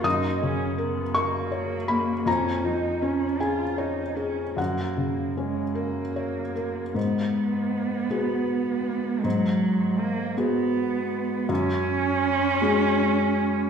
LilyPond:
<<
  \new Staff \with { instrumentName = "Felt piano" } { \time 6/8 \key fis \major \tempo 4. = 53 << { dis'''4. cis'''4 b''8 | ais''4. gis''4. | fis''2~ fis''8 r8 | r2. |
r2. | r2. | } \\ { <fis, ais'>8 cis8 ais'8 ais'8 cis''8 ais8 | eis,8 eis8 cis'8 gis'8 cis''8 gis'8 | fis,8 cis8 cis'8 ais'8 cis''8 ais'8 | gis,4. <b fis' gis'>4. |
gis,4. <b fis' gis'>4. | fis,4. <gis fis' gis'>4. | } >> }
  \new Staff \with { instrumentName = "Cello" } { \time 6/8 \key fis \major dis'8 cis'8 b8 ais4. | cis'8 dis'8 cis'8 eis'8 dis'8 cis'8 | ais4 gis8 ais4. | b2. |
fis4 ais8 b4. | cis'2. | }
>>